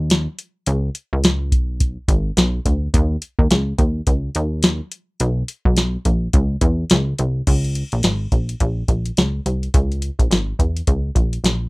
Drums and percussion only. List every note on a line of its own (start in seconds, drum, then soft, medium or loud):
0.10 snare loud
0.10 closed hi-hat loud
0.39 closed hi-hat medium
0.66 closed hi-hat loud
0.95 closed hi-hat medium
1.24 snare loud
1.24 closed hi-hat loud
1.52 kick medium
1.52 closed hi-hat medium
1.80 kick medium
1.80 closed hi-hat medium
2.08 kick medium
2.08 closed hi-hat medium
2.37 snare loud
2.37 closed hi-hat loud
2.65 kick medium
2.65 closed hi-hat medium
2.94 kick medium
2.94 closed hi-hat loud
3.22 closed hi-hat medium
3.39 kick medium
3.51 snare loud
3.51 closed hi-hat loud
3.78 kick medium
3.78 closed hi-hat medium
4.07 kick medium
4.07 closed hi-hat medium
4.35 closed hi-hat medium
4.63 snare loud
4.63 closed hi-hat loud
4.92 closed hi-hat medium
5.20 closed hi-hat loud
5.48 closed hi-hat medium
5.65 kick medium
5.77 snare medium
5.77 closed hi-hat medium
6.05 kick medium
6.05 closed hi-hat medium
6.33 kick medium
6.33 closed hi-hat medium
6.61 kick medium
6.61 closed hi-hat medium
6.90 snare loud
6.90 closed hi-hat loud
7.19 closed hi-hat medium
7.47 kick loud
7.47 closed hi-hat medium
7.47 crash medium
7.64 closed hi-hat soft
7.75 closed hi-hat medium
7.92 closed hi-hat soft
8.03 snare loud
8.03 closed hi-hat medium
8.32 kick medium
8.32 closed hi-hat medium
8.49 closed hi-hat medium
8.60 kick medium
8.60 closed hi-hat medium
8.88 kick medium
8.88 closed hi-hat medium
9.06 closed hi-hat soft
9.17 snare loud
9.17 closed hi-hat medium
9.46 closed hi-hat medium
9.63 closed hi-hat soft
9.74 kick loud
9.74 closed hi-hat medium
9.92 closed hi-hat soft
10.02 closed hi-hat medium
10.19 kick medium
10.19 closed hi-hat medium
10.31 snare loud
10.31 closed hi-hat medium
10.59 kick medium
10.59 closed hi-hat medium
10.77 closed hi-hat medium
10.87 kick medium
10.87 closed hi-hat medium
11.15 kick medium
11.15 closed hi-hat medium
11.33 closed hi-hat medium
11.44 snare loud
11.44 closed hi-hat medium